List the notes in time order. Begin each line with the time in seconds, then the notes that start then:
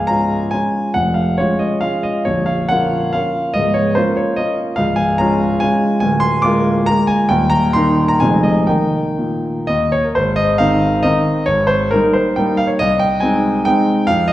Already playing: C#1 C#2 F5 G#5
0.07 G#3 C#4 F4 A#5
0.51 G#3 C#4 F4 G#5
0.94 F1 F2 F#5
1.14 F5
1.38 G#3 C#4 F4 C#5
1.59 D#5
1.81 G#3 C#4 F4 F5
2.03 D#5
2.25 A#0 A#1 C#5
2.46 F5
2.69 A#3 C#4 F4 F#5
3.13 A#3 C#4 F4 F5
3.54 C#1 C#2 D#5
3.74 C#5
3.95 A#3 C#4 F4 C5
4.17 C#5
4.36 A#3 C#4 F4 D#5
4.76 C#1 C#2 F5
4.96 G#5
5.18 G#3 C#4 F4 A#5
5.60 G#3 C#4 F4 G#5
6.00 D1 D2 G#5
6.20 C6
6.42 G#3 A#3 F4 D6
6.86 G#3 A#3 F4 A#5
7.07 G#5
7.29 D#1 D#2 G5
7.50 A#5
7.73 D#3 A#3 D#4 C6
8.08 A#5
8.20 F1 F2 C3 G#3 D#4 G#5
8.43 D#5
8.67 D#3 A#3 D#4 G5
9.18 A#2
9.67 D#2 D#5
9.92 C#5
10.04 A#4
10.15 G#1 C5
10.36 D#5
10.58 D#3 C4 D#4 F5
11.03 D#3 C4 D#4 D#5
11.46 G#1 C#5
11.67 C5
11.91 G3 A#3 D#4 A#4
12.13 C5
12.36 G3 A#3 D#4 G5
12.57 F5
12.67 C#5
12.79 C2 D#5
12.99 G5
13.20 G#3 C4 D#4 G#5
13.65 G#3 C4 D#4 G5
14.07 F2 F5
14.28 D#5